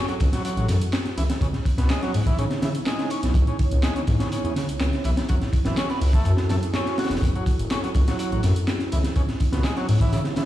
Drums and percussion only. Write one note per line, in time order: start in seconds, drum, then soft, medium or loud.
0.08 closed hi-hat soft
0.20 kick loud
0.20 closed hi-hat medium
0.20 ride medium
0.33 snare soft
0.33 closed hi-hat medium
0.45 closed hi-hat medium
0.57 closed hi-hat soft
0.68 snare soft
0.68 closed hi-hat medium
0.68 ride medium
0.81 closed hi-hat medium
0.93 snare loud
0.93 clap loud
0.93 closed hi-hat medium
1.05 snare medium
1.05 closed hi-hat soft
1.18 closed hi-hat medium
1.18 ride medium
1.30 snare medium
1.30 closed hi-hat medium
1.41 kick loud
1.41 closed hi-hat medium
1.53 snare soft
1.53 closed hi-hat soft
1.65 kick loud
1.65 closed hi-hat medium
1.65 ride medium
1.78 snare soft
1.78 closed hi-hat medium
1.89 snare loud
1.89 clap loud
1.89 closed hi-hat medium
2.02 snare medium
2.02 closed hi-hat soft
2.14 open hi-hat medium
2.14 ride medium
2.26 kick loud
2.26 closed hi-hat medium
2.39 closed hi-hat medium
2.50 snare soft
2.50 closed hi-hat soft
2.62 snare medium
2.62 closed hi-hat medium
2.62 ride medium
2.75 closed hi-hat medium
2.86 snare loud
2.86 clap loud
2.86 closed hi-hat medium
2.99 snare medium
2.99 closed hi-hat soft
3.10 closed hi-hat medium
3.10 ride medium
3.23 snare soft
3.23 closed hi-hat medium
3.34 kick loud
3.34 closed hi-hat medium
3.47 closed hi-hat soft
3.59 kick loud
3.59 closed hi-hat medium
3.59 ride medium
3.71 closed hi-hat medium
3.83 snare loud
3.83 clap loud
3.83 closed hi-hat medium
3.96 closed hi-hat soft
4.07 kick loud
4.07 closed hi-hat medium
4.07 ride medium
4.20 snare medium
4.20 closed hi-hat medium
4.32 closed hi-hat medium
4.45 closed hi-hat soft
4.56 snare soft
4.56 closed hi-hat medium
4.56 ride medium
4.69 closed hi-hat medium
4.81 snare loud
4.81 clap loud
4.81 closed hi-hat medium
4.93 snare soft
4.93 closed hi-hat soft
5.04 closed hi-hat medium
5.04 ride medium
5.17 snare medium
5.17 closed hi-hat medium
5.29 kick loud
5.29 closed hi-hat medium
5.29 closed hi-hat soft
5.41 snare soft
5.41 closed hi-hat soft
5.53 kick loud
5.53 closed hi-hat medium
5.53 ride medium
5.65 snare medium
5.65 closed hi-hat medium
5.77 snare loud
5.77 clap loud
5.77 closed hi-hat medium
5.90 snare soft
5.90 closed hi-hat soft
6.01 open hi-hat medium
6.01 ride medium
6.13 kick loud
6.13 closed hi-hat medium
6.25 closed hi-hat medium
6.25 closed hi-hat soft
6.37 snare soft
6.37 closed hi-hat soft
6.49 snare medium
6.49 closed hi-hat medium
6.49 ride medium
6.63 closed hi-hat medium
6.74 snare loud
6.74 clap loud
6.74 closed hi-hat loud
6.74 closed hi-hat soft
6.86 snare medium
6.86 closed hi-hat soft
6.98 snare medium
6.98 closed hi-hat medium
6.98 ride medium
7.04 snare medium
7.04 closed hi-hat medium
7.10 snare medium
7.10 closed hi-hat medium
7.15 snare medium
7.15 closed hi-hat medium
7.22 kick loud
7.22 closed hi-hat medium
7.35 closed hi-hat soft
7.46 kick loud
7.46 closed hi-hat medium
7.46 ride medium
7.59 closed hi-hat medium
7.70 snare loud
7.70 clap loud
7.70 closed hi-hat loud
7.70 closed hi-hat medium
7.84 closed hi-hat soft
7.94 kick loud
7.94 closed hi-hat medium
7.94 ride medium
8.08 snare medium
8.08 closed hi-hat medium
8.19 closed hi-hat medium
8.19 closed hi-hat soft
8.32 closed hi-hat soft
8.43 snare soft
8.43 closed hi-hat medium
8.43 ride medium
8.56 closed hi-hat medium
8.68 snare loud
8.68 clap loud
8.68 closed hi-hat medium
8.68 closed hi-hat soft
8.79 snare soft
8.79 closed hi-hat soft
8.92 closed hi-hat medium
8.92 ride medium
9.04 snare medium
9.04 closed hi-hat medium
9.16 kick loud
9.16 closed hi-hat medium
9.29 snare soft
9.29 closed hi-hat soft
9.40 kick loud
9.40 closed hi-hat medium
9.40 ride medium
9.52 snare medium
9.52 closed hi-hat medium
9.64 snare loud
9.64 clap loud
9.64 closed hi-hat medium
9.76 snare medium
9.76 closed hi-hat soft
9.89 open hi-hat medium
9.89 ride medium
10.00 kick medium
10.00 closed hi-hat medium
10.12 closed hi-hat medium
10.24 snare soft
10.24 closed hi-hat soft
10.36 snare medium
10.36 closed hi-hat medium
10.36 ride medium